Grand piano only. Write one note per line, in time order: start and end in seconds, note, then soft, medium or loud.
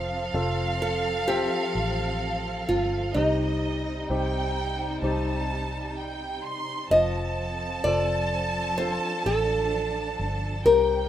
0.00 3.12 F3 medium
0.34 1.25 C4 soft
0.34 1.25 F4 soft
0.34 1.25 A4 medium
1.28 2.19 C4 medium
1.28 2.19 F4 soft
1.28 2.19 A4 medium
3.16 6.87 C3 medium
4.10 5.01 C4 medium
4.10 5.01 D#4 soft
4.10 5.01 G4 medium
5.03 5.94 C4 soft
5.03 5.94 D#4 soft
5.03 5.95 G4 soft
6.92 10.62 F3 medium
7.86 8.76 C4 soft
7.86 8.76 F4 soft
7.86 8.77 A4 medium
8.79 9.69 C4 soft
8.79 9.70 F4 soft
8.79 9.70 A4 soft
10.66 11.09 C3 medium